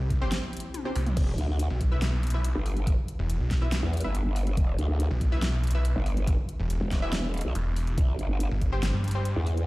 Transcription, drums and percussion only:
0.10 kick medium
0.10 closed hi-hat medium
0.32 snare loud
0.32 closed hi-hat medium
0.53 closed hi-hat medium
0.57 closed hi-hat medium
0.60 closed hi-hat medium
0.74 closed hi-hat medium
0.74 high tom medium
0.85 high tom medium
0.96 open hi-hat loud
1.06 closed hi-hat soft
1.06 mid tom medium
1.17 kick loud
1.17 closed hi-hat medium
1.17 crash loud
1.38 closed hi-hat medium
1.59 closed hi-hat medium
1.81 kick medium
1.81 closed hi-hat medium
2.02 snare loud
2.02 closed hi-hat medium
2.23 closed hi-hat medium
2.27 closed hi-hat medium
2.30 closed hi-hat medium
2.44 closed hi-hat medium
2.66 open hi-hat medium
2.77 closed hi-hat soft
2.87 kick loud
2.87 closed hi-hat medium
3.08 closed hi-hat medium
3.30 closed hi-hat medium
3.51 kick medium
3.51 snare medium
3.51 closed hi-hat medium
3.72 snare loud
3.72 closed hi-hat medium
3.93 closed hi-hat medium
3.97 closed hi-hat medium
4.01 closed hi-hat medium
4.15 closed hi-hat medium
4.36 open hi-hat medium
4.47 closed hi-hat soft
4.57 kick loud
4.57 closed hi-hat medium
4.79 closed hi-hat medium
5.00 closed hi-hat medium
5.21 kick medium
5.21 closed hi-hat medium
5.42 snare loud
5.42 closed hi-hat medium
5.64 closed hi-hat medium
5.67 closed hi-hat medium
5.71 closed hi-hat medium
5.85 closed hi-hat medium
6.06 open hi-hat medium
6.17 closed hi-hat soft
6.27 kick loud
6.27 closed hi-hat medium
6.49 closed hi-hat medium
6.70 closed hi-hat medium
6.91 kick medium
6.91 snare medium
6.91 closed hi-hat medium
7.13 snare loud
7.13 closed hi-hat medium
7.34 closed hi-hat soft
7.37 closed hi-hat medium
7.41 closed hi-hat medium
7.55 closed hi-hat medium
7.76 open hi-hat medium
7.87 closed hi-hat soft
7.98 kick loud
7.98 closed hi-hat medium
8.19 closed hi-hat medium
8.40 closed hi-hat medium
8.61 kick medium
8.61 closed hi-hat medium
8.83 snare loud
8.83 closed hi-hat medium
9.04 closed hi-hat soft
9.08 closed hi-hat medium
9.11 closed hi-hat medium
9.25 closed hi-hat medium
9.47 open hi-hat medium
9.57 closed hi-hat soft

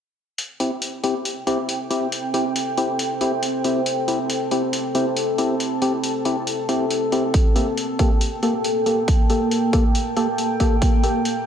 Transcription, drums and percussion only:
0.38 closed hi-hat medium
0.60 closed hi-hat medium
0.82 closed hi-hat medium
1.04 closed hi-hat medium
1.25 closed hi-hat medium
1.47 closed hi-hat soft
1.69 closed hi-hat medium
1.91 closed hi-hat medium
2.12 closed hi-hat medium
2.34 closed hi-hat medium
2.56 closed hi-hat medium
2.77 closed hi-hat soft
2.99 closed hi-hat medium
3.21 closed hi-hat medium
3.43 closed hi-hat medium
3.64 closed hi-hat medium
3.86 closed hi-hat medium
4.08 closed hi-hat medium
4.30 closed hi-hat medium
4.51 closed hi-hat medium
4.73 closed hi-hat medium
4.95 closed hi-hat medium
5.17 closed hi-hat medium
5.38 closed hi-hat medium
5.60 closed hi-hat medium
5.82 closed hi-hat medium
6.04 closed hi-hat medium
6.25 closed hi-hat soft
6.47 closed hi-hat medium
6.69 closed hi-hat soft
6.91 closed hi-hat medium
7.12 closed hi-hat soft
7.34 kick loud
7.34 closed hi-hat medium
7.56 closed hi-hat soft
7.77 closed hi-hat medium
7.99 kick loud
7.99 closed hi-hat soft
8.21 closed hi-hat medium
8.43 closed hi-hat soft
8.64 closed hi-hat medium
8.86 closed hi-hat soft
9.08 kick loud
9.08 closed hi-hat medium
9.30 closed hi-hat soft
9.51 closed hi-hat medium
9.73 kick loud
9.73 closed hi-hat soft
9.95 closed hi-hat medium
10.17 closed hi-hat soft
10.38 closed hi-hat medium
10.60 kick medium
10.60 closed hi-hat soft
10.82 kick loud
10.82 closed hi-hat medium
11.04 closed hi-hat medium
11.25 closed hi-hat medium

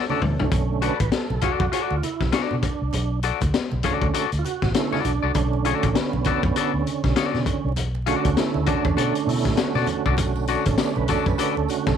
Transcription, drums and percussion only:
0.10 high conga medium
0.22 mid tom medium
0.40 floor tom medium
0.52 kick loud
0.52 closed hi-hat medium
0.52 muted conga soft
0.52 low conga medium
0.82 closed hi-hat medium
1.00 kick loud
1.00 closed hi-hat medium
1.00 high conga medium
1.12 snare loud
1.12 closed hi-hat medium
1.12 muted conga soft
1.30 muted conga soft
1.30 high conga medium
1.41 kick loud
1.41 closed hi-hat medium
1.41 low conga medium
1.60 kick loud
1.73 closed hi-hat medium
1.90 muted conga soft
2.03 closed hi-hat medium
2.03 high conga medium
2.21 kick medium
2.21 snare soft
2.21 high conga medium
2.32 snare loud
2.32 closed hi-hat medium
2.51 muted conga soft
2.51 high conga medium
2.63 kick loud
2.63 closed hi-hat medium
2.63 low conga medium
2.93 closed hi-hat medium
2.93 muted conga soft
2.93 low conga medium
3.23 closed hi-hat medium
3.41 kick medium
3.41 closed hi-hat medium
3.41 high conga medium
3.54 snare loud
3.54 closed hi-hat medium
3.54 muted conga soft
3.71 muted conga soft
3.71 high conga medium
3.83 kick medium
3.83 closed hi-hat medium
3.83 low conga medium
4.02 kick loud
4.14 closed hi-hat medium
4.14 muted conga soft
4.32 closed hi-hat soft
4.45 closed hi-hat medium
4.45 high conga medium
4.62 kick medium
4.62 snare soft
4.62 high conga medium
4.74 snare loud
4.74 closed hi-hat medium
4.93 snare soft
4.93 high conga medium
5.05 closed hi-hat medium
5.05 low conga medium
5.35 kick loud
5.35 closed hi-hat medium
5.35 muted conga soft
5.35 low conga medium
5.53 muted conga soft
5.65 closed hi-hat medium
5.83 kick medium
5.83 closed hi-hat medium
5.83 high conga medium
5.95 snare loud
5.95 closed hi-hat medium
5.95 muted conga soft
6.13 muted conga soft
6.13 high conga medium
6.24 kick loud
6.24 closed hi-hat medium
6.24 low conga loud
6.43 kick loud
6.56 closed hi-hat loud
6.87 closed hi-hat medium
6.87 high conga medium
7.04 kick medium
7.04 snare soft
7.04 high conga medium
7.16 snare loud
7.16 closed hi-hat medium
7.16 muted conga soft
7.34 snare soft
7.34 high conga medium
7.46 kick medium
7.46 closed hi-hat medium
7.46 low conga medium
7.76 closed hi-hat medium
7.76 muted conga soft
7.76 low conga medium
7.95 muted conga soft
8.06 closed hi-hat medium
8.25 kick medium
8.25 closed hi-hat medium
8.25 high conga medium
8.37 snare loud
8.37 closed hi-hat medium
8.54 muted conga soft
8.54 high conga medium
8.66 kick loud
8.66 closed hi-hat medium
8.66 low conga medium
8.85 kick loud
8.97 closed hi-hat medium
8.97 muted conga soft
9.15 closed hi-hat medium
9.27 open hi-hat medium
9.27 high conga medium
9.45 kick medium
9.45 snare soft
9.45 high conga medium
9.57 snare loud
9.57 closed hi-hat medium
9.57 muted conga soft
9.75 snare soft
9.75 high conga medium
9.86 closed hi-hat medium
9.86 low conga medium
10.06 kick loud
10.17 kick loud
10.17 closed hi-hat medium
10.17 tambourine medium
10.17 low conga medium
10.36 tambourine soft
10.36 muted conga soft
10.47 closed hi-hat medium
10.47 tambourine medium
10.65 kick medium
10.65 closed hi-hat medium
10.65 high conga medium
10.78 snare loud
10.78 closed hi-hat medium
10.78 tambourine medium
10.78 muted conga soft
10.96 muted conga soft
10.96 high conga medium
11.08 kick medium
11.08 closed hi-hat medium
11.08 tambourine medium
11.08 low conga medium
11.26 kick loud
11.26 tambourine soft
11.38 closed hi-hat medium
11.38 tambourine medium
11.38 muted conga soft
11.57 muted conga soft
11.68 closed hi-hat medium
11.68 tambourine soft
11.68 high conga medium
11.86 kick medium
11.86 snare soft
11.86 tambourine soft
11.86 high conga medium

